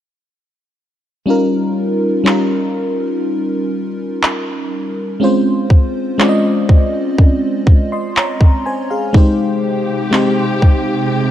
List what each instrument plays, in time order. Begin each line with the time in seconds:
1.26 fm electric piano G3 C#4 D#4 F4
1.30 fm electric piano A#4
2.24 fm electric piano G3 C#4 D#4 F4, clap
2.28 fm electric piano A#4
4.23 clap
5.20 fm electric piano G#3 C4 C#4 F4
5.24 fm electric piano C5
5.70 kick
6.18 fm electric piano G#3 C4 C#4 F4, clap
6.22 fm electric piano D5
6.29 fm electric piano D#5
6.69 kick
7.18 kick
7.67 kick
7.92 fm electric piano D#5 C6
8.17 fm electric piano C#5 A#5, clap
8.41 kick
8.66 fm electric piano C5 G#5
8.90 fm electric piano G#4 F5
9.13 string section C3 G#3 G4, fm electric piano G#3 C4 D#4 G4, kick
9.17 fm electric piano C5
10.11 fm electric piano G#3 C4 D#4 G4, clap
10.15 fm electric piano C5
10.62 kick